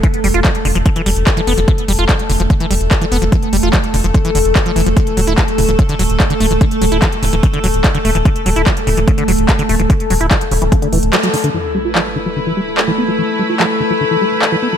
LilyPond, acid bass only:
\new Staff \with { instrumentName = "Acid bass" } { \clef bass \time 4/4 \key d \dorian \tempo 4 = 146 e16 r16 g16 f'16 f16 r16 d16 f16 d16 e16 g16 r8 e16 b16 f16 | e16 r16 g16 f'16 f16 r16 d16 f16 d16 e16 g16 r8 e16 b16 f16 | e16 r16 g16 f'16 f16 r16 d16 f16 d16 e16 d16 r8 f16 e16 f16 | d16 r16 fis16 e'16 e16 r16 cis16 e16 cis16 d16 fis16 r8 d16 a16 e16 |
d16 r16 fis16 e'16 e16 r16 cis16 e16 cis16 d16 fis16 r8 d16 a16 e16 | d16 r16 fis16 e'16 e16 r16 cis16 e16 cis16 d16 fis16 r8 d16 a16 e16 | d16 r16 fis16 e'16 e16 r16 cis16 e16 cis16 d16 e16 r16 fis16 fis16 d16 d16 | e16 r16 g16 f'16 f16 r16 d16 f16 d16 e16 g16 r8 e16 b16 f16 |
e16 r16 g16 f'16 f16 r16 d16 f16 d16 e16 g16 r8 e16 b16 f16 | }